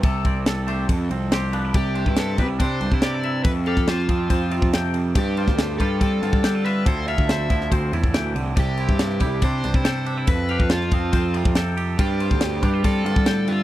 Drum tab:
RD |x-x-x-x-x-x-x-x-|x-x-x-x-x-x-x-x-|x-x-x-x-x-x-x-x-|x-x-x-x-x-x-x-x-|
SD |----o-------o---|----o-------o---|---ooo------o---|---oo-----o-o---|
BD |o-o-----o-------|o--o--o-o--o----|o--o--o-o--o----|o--o--o-o--o----|

RD |x-x-x-x-x-x-x-x-|x-x-x-x-x-x-x-x-|x-x-x-x-x-x-x-x-|x-x-x-x-x-x-x-x-|
SD |----o--o----o---|----oo----o-o---|----oo------o---|----o-------o---|
BD |o--o--o-o--o----|o--o--o-o--o----|o--o--o-o--o----|o--o--o-o--o----|